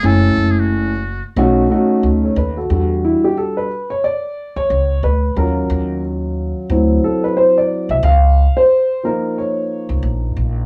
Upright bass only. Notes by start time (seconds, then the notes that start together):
0.04 F#1
0.37 F#1
1.36 B1
2.03 D2
2.36 D#2
2.70 E2
4.56 E2
4.70 C#2
5.03 D2
5.36 D#2
5.70 D#2
6.70 D2
7.89 C2
8.03 C#2
9.89 C#2
10.03 A#1
10.37 A#1